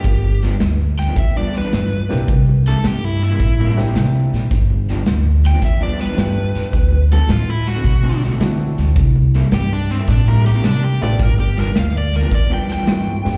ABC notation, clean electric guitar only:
X:1
M:4/4
L:1/16
Q:"Swing" 1/4=108
K:Gmix
V:1 name="Clean electric guitar"
z2 [G,,F,B,D] z4 [G,,F,B,D] z [G,,F,B,D] z [G,,F,B,D] z4 | z2 [C,G,_B,E] z4 [C,G,B,E] z [C,G,B,E] z [C,G,B,E] z4 | z2 [G,,F,B,D] z4 [G,,F,B,D] z [G,,F,B,D] z [G,,F,B,D] z4 | z2 [D,A,C^F] z4 [D,A,CF] z [D,A,CF] z [D,A,CF] z4 |
z2 [C,G,_B,E] z4 [C,G,B,E] z [C,G,B,E] z [C,G,B,E] z4 | z2 [G,,F,B,D] z4 [G,,F,B,D] z [G,,F,B,D] z [G,,F,B,D] z4 |]